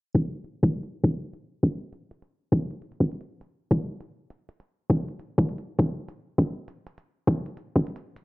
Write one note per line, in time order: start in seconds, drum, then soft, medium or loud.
0.15 kick loud
0.15 closed hi-hat medium
0.33 closed hi-hat soft
0.44 closed hi-hat medium
0.63 kick loud
0.74 closed hi-hat soft
0.83 closed hi-hat medium
1.04 kick medium
1.04 closed hi-hat medium
1.33 closed hi-hat medium
1.63 kick medium
1.63 closed hi-hat medium
1.93 closed hi-hat medium
2.11 closed hi-hat medium
2.22 closed hi-hat medium
2.52 kick loud
2.52 closed hi-hat medium
2.71 closed hi-hat soft
2.82 closed hi-hat medium
2.92 closed hi-hat soft
3.00 kick medium
3.00 closed hi-hat soft
3.12 closed hi-hat soft
3.21 closed hi-hat medium
3.41 closed hi-hat medium
3.71 kick loud
3.71 closed hi-hat medium
4.01 closed hi-hat medium
4.30 closed hi-hat medium
4.49 closed hi-hat medium
4.60 closed hi-hat medium
4.90 kick loud
4.90 closed hi-hat medium
5.09 closed hi-hat soft
5.20 closed hi-hat medium
5.38 kick loud
5.49 closed hi-hat soft
5.58 closed hi-hat medium
5.79 kick loud
5.79 closed hi-hat medium
6.09 closed hi-hat medium
6.38 kick medium
6.38 closed hi-hat medium
6.68 closed hi-hat medium
6.87 closed hi-hat medium
6.98 closed hi-hat medium
7.27 kick loud
7.27 closed hi-hat medium
7.46 closed hi-hat soft
7.57 closed hi-hat medium
7.76 kick medium
7.87 closed hi-hat soft
7.96 closed hi-hat medium
8.16 closed hi-hat medium